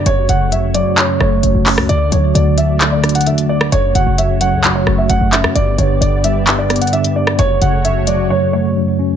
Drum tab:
HH |x---x---x---x---x-------x---o---|x---x---x---x---x---xxxxx-x-----|x---x---x---x---x-------x---x---|x---x---x---x---x---xxxxx-x-----|
CP |----------------x-----------x---|----------------x---------------|----------------x-----------x---|----------------x---------------|
SD |--------------------r---------r-|--------------------r---------r-|--------------------r---------r-|--------------------r---------r-|

HH |x---x---x---x-------------------|
CP |--------------------------------|
SD |--------------------------------|